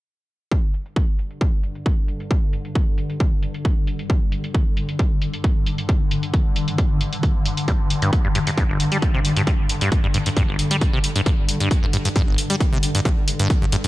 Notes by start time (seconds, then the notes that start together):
0.51 G2 D3, kick
0.74 closed hi-hat
0.86 closed hi-hat
0.96 kick
1.19 closed hi-hat
1.31 closed hi-hat
1.41 kick
1.64 closed hi-hat
1.75 closed hi-hat
1.86 kick
2.08 closed hi-hat
2.20 closed hi-hat
2.31 kick, closed hi-hat
2.53 closed hi-hat
2.65 closed hi-hat
2.75 kick
2.98 closed hi-hat
3.10 closed hi-hat
3.20 kick, closed hi-hat
3.43 closed hi-hat
3.54 closed hi-hat
3.65 kick, closed hi-hat
3.87 closed hi-hat
3.99 closed hi-hat
4.10 kick, closed hi-hat
4.32 closed hi-hat
4.44 closed hi-hat
4.54 kick, closed hi-hat
4.77 closed hi-hat
4.89 closed hi-hat
4.99 kick, closed hi-hat
5.22 closed hi-hat
5.33 closed hi-hat
5.44 kick, closed hi-hat
5.66 closed hi-hat
5.78 closed hi-hat
5.89 kick, closed hi-hat
6.11 closed hi-hat
6.23 closed hi-hat
6.34 kick, closed hi-hat
6.56 closed hi-hat
6.68 closed hi-hat
6.78 kick, closed hi-hat
7.01 closed hi-hat
7.13 closed hi-hat
7.23 kick, closed hi-hat
7.46 closed hi-hat
7.57 closed hi-hat
7.68 G2, kick, closed hi-hat
7.90 closed hi-hat
8.02 G2, closed hi-hat
8.13 kick, closed hi-hat
8.25 G2
8.35 G2, closed hi-hat
8.47 G2, closed hi-hat
8.58 G2, kick, closed hi-hat
8.69 G1
8.80 closed hi-hat
8.92 G3, closed hi-hat
9.02 kick, closed hi-hat
9.14 C3
9.25 closed hi-hat
9.37 G2, closed hi-hat
9.47 G2, kick, closed hi-hat
9.69 closed hi-hat
9.81 G2, closed hi-hat
9.92 kick, closed hi-hat
10.04 G2
10.14 G2, closed hi-hat
10.26 G2, closed hi-hat
10.37 G2, kick, closed hi-hat
10.48 G1
10.59 closed hi-hat
10.71 G3, closed hi-hat
10.81 kick, closed hi-hat
10.93 C3
11.04 closed hi-hat
11.16 G2, closed hi-hat
11.26 G2, kick, closed hi-hat
11.49 closed hi-hat
11.60 G2, closed hi-hat
11.71 kick, closed hi-hat
11.83 G2
11.93 G2, closed hi-hat
12.05 G2, closed hi-hat
12.16 G2, kick, closed hi-hat
12.28 G1
12.38 closed hi-hat
12.50 G3, closed hi-hat
12.60 kick, closed hi-hat
12.72 C3
12.83 closed hi-hat
12.95 G2, closed hi-hat
13.05 G2, kick, closed hi-hat
13.28 closed hi-hat
13.39 G2, closed hi-hat
13.50 kick, closed hi-hat
13.62 G2
13.72 G2, closed hi-hat
13.84 G2, closed hi-hat